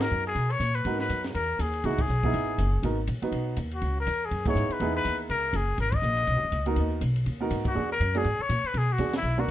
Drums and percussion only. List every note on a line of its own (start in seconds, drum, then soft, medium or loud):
0.00 snare medium
0.00 ride medium
0.10 hi-hat pedal medium
0.35 kick soft
0.35 ride medium
0.50 ride soft
0.60 kick soft
0.60 hi-hat pedal medium
0.60 ride medium
0.75 ride soft
0.85 kick soft
0.85 ride medium
0.99 snare soft
1.09 kick soft
1.09 hi-hat pedal medium
1.09 ride medium
1.24 snare soft
1.24 ride soft
1.35 kick soft
1.35 ride medium
1.59 kick soft
1.59 hi-hat pedal medium
1.59 ride medium
1.74 ride soft
1.84 kick soft
1.84 ride medium
1.98 kick medium
1.98 ride medium
2.09 hi-hat pedal soft
2.23 kick medium
2.34 kick soft
2.34 ride medium
2.58 kick soft
2.58 hi-hat pedal soft
2.58 ride medium
2.83 kick soft
2.83 ride medium
3.07 kick soft
3.07 hi-hat pedal medium
3.07 ride medium
3.22 ride soft
3.32 kick soft
3.32 ride medium
3.57 kick soft
3.57 hi-hat pedal soft
3.57 ride medium
3.71 ride soft
3.82 kick soft
3.82 ride medium
4.07 kick soft
4.07 hi-hat pedal medium
4.07 ride medium
4.31 kick soft
4.31 ride medium
4.45 kick medium
4.45 ride medium
4.56 hi-hat pedal medium
4.71 ride soft
4.80 kick soft
4.80 ride medium
5.05 kick soft
5.05 hi-hat pedal medium
5.05 ride medium
5.29 kick soft
5.29 ride medium
5.53 kick soft
5.53 hi-hat pedal medium
5.53 ride medium
5.78 kick soft
5.78 ride medium
5.92 kick medium
5.92 ride medium
6.03 hi-hat pedal medium
6.17 ride soft
6.27 kick soft
6.27 ride soft
6.52 kick soft
6.52 hi-hat pedal medium
6.52 ride medium
6.66 ride soft
6.76 kick soft
6.76 ride medium
7.01 kick soft
7.01 hi-hat pedal medium
7.01 ride medium
7.16 ride soft
7.26 kick soft
7.26 ride medium
7.51 kick soft
7.51 hi-hat pedal medium
7.51 ride medium
7.65 kick medium
7.65 ride medium
8.00 kick soft
8.00 hi-hat pedal medium
8.00 ride medium
8.15 ride soft
8.25 kick soft
8.25 ride soft
8.50 kick soft
8.50 hi-hat pedal soft
8.50 ride medium
8.64 ride soft
8.74 kick soft
8.74 ride medium
8.98 kick soft
8.98 hi-hat pedal soft
8.98 ride medium
9.13 snare medium
9.13 ride medium